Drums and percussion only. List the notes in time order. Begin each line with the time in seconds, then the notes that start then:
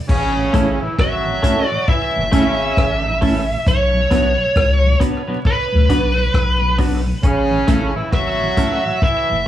0.09 kick, crash
0.54 kick, closed hi-hat
0.99 kick, cross-stick
1.43 kick, closed hi-hat
1.88 kick
2.33 kick, closed hi-hat
2.77 kick, cross-stick
3.22 kick, open hi-hat
3.66 kick, hi-hat pedal
4.11 kick, cross-stick, closed hi-hat
4.56 kick, cross-stick
5.00 kick, closed hi-hat
5.45 kick
5.90 kick, closed hi-hat
6.34 kick, cross-stick
6.78 kick, open hi-hat
7.23 kick, hi-hat pedal
7.68 kick, cross-stick, closed hi-hat
8.13 kick, cross-stick
8.57 kick, closed hi-hat
9.02 kick